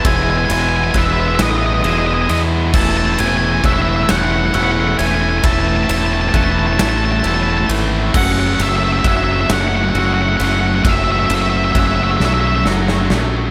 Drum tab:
CC |------------|x-----------|------------|x-----------|
RD |x-x-x-x-x-x-|--x-x-x-x-x-|x-x-x-x-x-x-|--x-x-x-x-x-|
SD |------o-----|------o-----|------o-----|------o-----|
BD |o---o-------|o---o-------|o---o-------|o---o-------|

CC |------------|
RD |x-x-x-------|
SD |------o-ooo-|
BD |o---o-------|